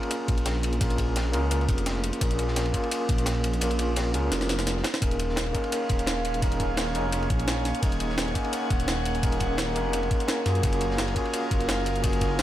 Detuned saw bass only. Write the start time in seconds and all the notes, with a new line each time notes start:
0.28 A#1
0.81 A#1
1.33 C#2
1.69 F1
2.21 A#1
3.09 A#1
3.62 A#1
4.14 C#2
4.32 F1
5.02 D#1
5.90 D#1
6.42 D#1
6.95 F1
7.30 A#1
7.83 D#1
8.70 D#1
9.23 D#1
9.76 F1
10.46 F#2
10.63 F#1
11.51 F#1
12.04 F#1